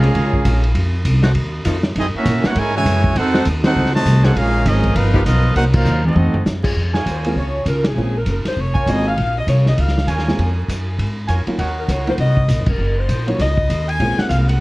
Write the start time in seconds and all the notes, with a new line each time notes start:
Already playing: C2 G#3 C#4 F4 G#4 A#4 F5
0.03 F3 A#3 C#4 G#4, ride
0.15 C#2, kick, ride
0.33 kick
0.45 A#1, kick, hi-hat pedal, ride
0.64 ride
0.75 F2, kick, ride
1.05 C2, kick, hi-hat pedal, ride
1.23 F3 A3 D#4 F#4, snare, ride
1.35 D#2, kick, ride
1.65 F2 F3 A3 D#4 F4, kick, hi-hat pedal, ride
1.83 snare
1.95 F#2 C4 D#4 E4 G#4 D#5, kick, ride
2.14 A#3 C#4 E4 F#4 A#4 E5, muted upright bass stroke
2.26 A#2, kick, hi-hat pedal, ride
2.44 E3 A#3 C#4 E4 F#4 A#4 C#5 F#5, muted upright bass stroke, snare
2.56 G#2 G#3 E4 A#4 C#5 G#5, kick, ride
2.75 C#3 E3 G#3 F#4 C#5 E5 G#5
2.86 F#2, kick, hi-hat pedal, ride
3.04 kick
3.15 F2 C4 D#4 F#4 A4 C5 F#5, kick, ride
3.34 F3 A3 D#4 F#4, snare
3.45 D#2, kick, hi-hat pedal, ride
3.64 C4 D#4 F#4 A4 C5 F#5, snare, ride
3.76 C#2
3.85 snare
3.94 C3 D#3 A3 F#4 C5 D#5 A5, snare
4.06 C2, kick, hi-hat pedal, ride
4.23 F3 A#3 C4 C#4 D#4 F#4 G#4 A4 C5 F#5, snare, ride
4.35 A#1 G#3 C#4 F4 G#4 A#4 F5, kick, ride
4.66 G#1 F3 G#3 C#4 D#4 G#4 A#4 D#5, kick, hi-hat pedal, ride
4.83 kick, ride
4.95 G1 F3 B3 D#4 F4 A#4 B4 F5, kick, ride
5.13 F3 B3 D#4 G4, kick
5.26 B1 F3 B3 D#4 F4 A#4 D#5, kick, hi-hat pedal, ride
5.55 C2 F#3 A#3 C4 D#4 F#4 A#4 C5 F#5, kick, ride
5.73 F#3 A#3 D#4 F4 A#4 C5 F5, kick, crash
5.85 D#2, hi-hat pedal
6.04 A3 C4 D#4 F#4 A4 D#5, high tom
6.15 F2, high tom
6.34 muted upright bass stroke, floor tom
6.46 F#2, snare, hi-hat pedal
6.63 G#3 C#4 F4 G#4, kick, crash
6.76 F2, kick
6.94 F4 G#4 A#4 C#5 G#5, snare
7.06 D#2 C5, kick, hi-hat pedal, ride
7.24 G#3 A#3 C4 C#4 F4 A#4, ride
7.36 C#2 C#5, kick
7.66 C#2 A#4, kick, hi-hat pedal, ride
7.84 G#4, snare, ride
7.96 A#1 G#3 A#3 C4 C#4 F4
8.17 A#4
8.26 F#1 A#4, kick, hi-hat pedal, ride
8.45 C5, muted upright bass stroke, snare, ride
8.56 F1 C#5, kick
8.74 F4 A#4 C#5 G#5, kick
8.86 G#1 G#3 A#3 C4 C#4 F4 D#5, kick, hi-hat pedal, ride
9.08 F5
9.17 A#1, kick, ride
9.38 D#5
9.47 C2 C#5, kick, hi-hat pedal, ride
9.66 D#5, snare
9.77 C#2 F5, kick, ride
9.88 snare
9.98 snare
10.07 D#2 F4 A#4 C#5 G#5, kick, hi-hat pedal, ride
10.18 snare
10.27 G#3 A#3 C4 C#4 F4, snare
10.38 F2, kick, ride
10.68 F#2, kick, hi-hat pedal, ride
10.99 G#2, kick, ride
11.28 F2 F4 A#4 C#5 G#5, kick, hi-hat pedal, ride
11.46 F#3 A#3 C#4 D#4 F4, muted upright bass stroke, ride
11.58 D#2 D#4 A#4 C#5 F#5, kick, ride
11.79 A#4
11.88 C#2 C#5, kick, hi-hat pedal, ride
12.07 F#3 A#3 C#4 D#4 F4 C5, ride
12.18 C2 D#5, kick, ride
12.37 kick
12.48 A#1, kick, hi-hat pedal, ride
12.59 F#1
12.66 D#1 A#4, kick, crash
12.78 F#1
12.99 C5
13.09 A#1, kick, hi-hat pedal, ride
13.27 F#3 A#3 C#4 D#4 F4 C#5, ride
13.39 C#2 D#5, kick, snare, ride
13.58 kick
13.69 D#2, kick, hi-hat pedal, ride
13.89 G#5, ride
14.00 A#1 G#3 A#3 C4 C#4 F4, kick, ride
14.18 F#5, muted upright bass stroke, snare
14.30 C2 F5, kick, hi-hat pedal, ride
14.49 F#5, ride